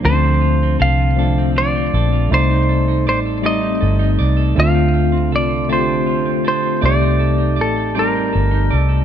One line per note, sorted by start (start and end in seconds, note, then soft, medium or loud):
0.00 0.11 D#3 soft
0.00 1.03 F3 medium
0.00 0.11 A#3 soft
0.00 0.26 D4 medium
0.04 0.76 D2 loud
0.04 1.18 D3 medium
0.04 1.04 A3 medium
0.04 1.04 C4 medium
0.04 0.11 C#4 medium
0.04 0.79 A4 medium
0.04 0.76 C5 loud
0.13 1.08 D4 medium
0.23 0.62 C4 medium
0.41 0.98 F4 medium
0.63 1.38 C4 medium
0.80 1.89 C2 medium
0.80 1.19 A4 medium
0.80 1.52 F5 loud
0.99 1.55 F4 soft
1.16 2.53 D3 medium
1.16 2.16 F3 medium
1.16 2.17 A3 medium
1.16 2.17 C4 medium
1.16 2.18 D4 medium
1.16 1.94 A4 medium
1.38 1.75 C4 medium
1.56 2.11 F4 medium
1.56 2.34 D5 loud
1.75 2.32 C4 medium
1.94 2.27 A#1 medium
1.94 2.32 A4 medium
2.12 2.38 F4 medium
2.29 3.07 C2 loud
2.29 3.29 G3 medium
2.29 3.30 A3 medium
2.29 3.43 C4 medium
2.29 3.31 D#4 medium
2.29 3.30 D5 medium
2.29 3.06 D5 medium
2.34 3.08 C5 loud
2.50 2.87 D#4 medium
2.69 3.25 A4 medium
2.88 3.60 D#4 medium
3.07 3.78 A1 medium
3.07 3.19 C5 loud
3.07 3.43 D5 medium
3.26 3.80 A4 medium
3.42 4.42 G3 medium
3.42 4.43 A3 medium
3.42 4.74 C4 medium
3.42 4.44 C4 medium
3.42 4.44 D#4 medium
3.42 4.18 D5 medium
3.46 4.59 D#5 loud
3.61 3.98 D#4 medium
3.81 4.16 G1 loud
3.81 4.36 A4 medium
3.99 4.64 D#4 medium
4.19 4.53 C2 medium
4.19 4.78 D5 medium
4.37 4.56 A4 medium
4.55 5.33 D2 loud
4.55 5.68 D3 medium
4.55 5.56 A3 medium
4.55 5.56 C4 medium
4.55 5.57 D4 medium
4.55 5.57 F4 medium
4.55 5.32 A4 medium
4.60 5.35 F5 loud
4.75 5.12 C4 medium
4.93 5.48 F4 medium
5.12 5.88 C4 medium
5.32 6.46 C2 medium
5.32 5.69 A4 medium
5.32 5.72 D5 loud
5.49 6.05 F4 soft
5.68 7.04 D3 medium
5.68 6.69 A3 medium
5.68 6.69 C4 medium
5.68 6.70 D4 medium
5.68 5.77 F4 medium
5.68 6.44 A4 medium
5.73 6.47 C5 medium
5.79 6.74 G4 medium
5.89 6.25 C4 medium
6.06 6.61 F4 medium
6.26 6.81 C4 medium
6.45 6.80 A#1 medium
6.45 7.04 A4 medium
6.45 6.85 C5 medium
6.63 6.90 F4 medium
6.81 7.59 C2 loud
6.81 7.82 A3 medium
6.81 7.94 C4 medium
6.81 7.83 D#4 medium
6.81 7.84 G4 medium
6.81 7.56 D5 medium
6.81 7.83 D5 medium
6.86 7.62 D5 loud
7.01 7.37 D#4 medium
7.20 7.76 A4 medium
7.38 8.14 D#4 medium
7.56 8.30 A1 medium
7.56 7.95 D5 medium
7.61 7.95 A4 medium
7.76 8.32 A4 soft
7.95 8.95 G3 medium
7.95 9.05 C4 medium
7.95 8.97 D#4 medium
7.95 8.70 D5 medium
7.95 8.96 D5 medium
7.95 8.97 A5 medium
7.99 8.75 A#4 medium
8.15 8.50 D#4 medium
8.33 8.69 G1 medium
8.33 8.88 A4 medium
8.51 9.05 D#4 medium
8.71 9.05 C2 medium
8.71 9.05 D5 medium
8.75 9.05 A4 medium
8.89 9.05 A4 medium